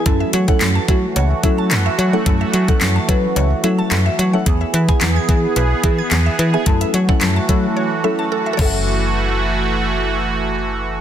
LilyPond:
<<
  \new Staff \with { instrumentName = "Synth arpeggio sound" } { \time 4/4 \key fis \minor \tempo 4 = 109 a'16 e''16 cis''16 fis''16 r16 a''16 a'16 r16 cis''16 r16 e''16 a''16 a'16 e''16 cis''16 fis''16 | a'16 e''16 cis''16 fis''16 r16 a''16 a'16 r16 cis''16 r16 e''16 a''16 a'16 e''16 cis''16 fis''16 | gis'16 e''16 b'16 gis''16 r16 gis'''16 gis'16 r16 b'16 r16 e''16 gis'''16 gis'16 e''16 b'16 gis''16 | a'16 e''16 cis''16 fis''16 r16 a''16 a'16 r16 cis''16 r16 e''16 a''16 a'16 e''16 <a' cis'' e'' fis''>8~ |
<a' cis'' e'' fis''>1 | }
  \new Staff \with { instrumentName = "Synth stab" } { \time 4/4 \key fis \minor <fis a cis' e' a'>8 r16 <fis a cis' e' a'>8 r16 <fis a cis' e' fis'>8. r16 <fis a cis' e' a'>4 r16 <fis a cis' e' a'>16 | <fis a cis' e' a'>8 r16 <fis a cis' e' a'>8 r16 <fis a cis' e' b'>8. r16 <fis a cis' e' a'>4 r16 <fis a cis' e' a'>16 | <b e' gis'>8 r16 <b e' gis'>8 r16 <b e' gis'>8. r16 <b e' gis'>4 r16 <b e' gis'>16 | <fis a cis' e' a'>8 r16 <fis a cis' e' a'>8 r16 <fis a cis' e' a'>8. r16 <fis a cis' e' a'>4 <fis cis' e' a'>8~ |
<fis cis' e' a'>1 | }
  \new Staff \with { instrumentName = "Analog synth pad" } { \time 4/4 \key fis \minor << { <a fis'>1~ | <a fis'>1 | <b gis'>1 | <a fis'>2.~ <a fis'>8 <e a fis'>8~ |
<e a fis'>1 | } \\ { e1~ | e1~ | e1 | e2.~ e8 r8 |
r1 | } >> }
  \new Staff \with { instrumentName = "FM bass" } { \clef bass \time 4/4 \key fis \minor fis,8 fis8 fis,8 fis8 cis,8 fis8 fis,8 fis8 | fis,8 fis8 fis,8 fis8 cis,8 fis8 fis,8 fis8 | e,8 e8 e,8 e8 b,,8 e8 e,8 e8 | fis,8 fis8 fis,8 fis8 r4. fis,,8~ |
fis,,1 | }
  \new DrumStaff \with { instrumentName = "Drums" } \drummode { \time 4/4 <hh bd>8 hh16 <hh bd>16 <hc hh sn>8 <hh bd>8 hh8 <hh bd>8 <hc hh sn>8 hh8 | <hh bd>8 hh16 <hh bd>16 <hc hh sn>8 <hh bd>8 hh8 hh8 <hc hh sn>8 hh8 | <hh bd>8 hh16 <hh bd>16 <hc hh sn>8 <hh bd>8 hh8 <hh bd>8 <hc hh sn>8 hh8 | <hh bd>16 hh16 hh16 bd16 <hc hh sn>8 <hh bd>8 r4 r8 <cymc bd>8 |
r4 r4 r4 r4 | }
>>